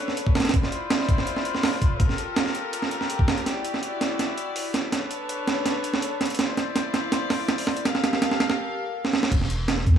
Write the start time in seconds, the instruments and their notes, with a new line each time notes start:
Already playing: string section D4 A4 B4 C#5
0.08 snare
0.17 closed hi-hat
0.27 kick
0.35 snare, closed hi-hat
0.40 snare, closed hi-hat
0.45 snare, closed hi-hat
0.49 snare, closed hi-hat
0.54 string section E4 F4 C5 D5, kick, closed hi-hat
0.63 snare
0.72 closed hi-hat
0.90 snare, closed hi-hat
1.00 snare
1.09 kick, closed hi-hat
1.18 snare
1.27 closed hi-hat
1.36 snare
1.45 closed hi-hat
1.55 snare
1.63 snare, open hi-hat
1.82 kick, closed hi-hat
2.00 string section G4 A4 A#4, kick, closed hi-hat
2.09 snare
2.18 closed hi-hat
2.36 snare, closed hi-hat
2.46 snare
2.55 closed hi-hat
2.73 closed hi-hat
2.82 snare
2.91 closed hi-hat
3.01 snare
3.10 closed hi-hat
3.19 kick
3.28 snare, closed hi-hat
3.38 closed hi-hat
3.46 string section E4 F#4 D5, snare, closed hi-hat
3.65 closed hi-hat
3.74 snare
3.83 closed hi-hat
4.01 snare, closed hi-hat
4.19 snare, closed hi-hat
4.38 closed hi-hat
4.56 open hi-hat
4.74 snare, closed hi-hat
4.92 string section D4 A4 B4 C#5, snare, closed hi-hat
5.11 closed hi-hat
5.29 closed hi-hat
5.47 snare, closed hi-hat
5.66 snare, closed hi-hat
5.84 closed hi-hat
5.94 snare
6.02 closed hi-hat
6.21 snare, closed hi-hat
6.25 closed hi-hat
6.30 closed hi-hat
6.35 closed hi-hat
6.39 string section E4 F4 C5 D5, snare, closed hi-hat
6.57 snare, closed hi-hat
6.76 snare, closed hi-hat
6.94 snare, closed hi-hat
7.12 snare, closed hi-hat
7.30 snare, open hi-hat
7.48 snare, closed hi-hat
7.58 open hi-hat
7.67 snare
7.77 closed hi-hat
7.85 string section G4 A4 A#4 F5, snare, closed hi-hat
7.95 snare
8.04 snare, closed hi-hat
8.13 snare
8.22 snare, closed hi-hat
8.31 snare
8.40 snare, closed hi-hat
8.50 snare
9.05 snare
9.13 snare
9.23 snare
9.32 808-style bass E1, kick, closed hi-hat, crash
9.41 snare
9.50 closed hi-hat
9.68 snare, closed hi-hat
9.78 snare
9.86 808-style bass E2, kick, closed hi-hat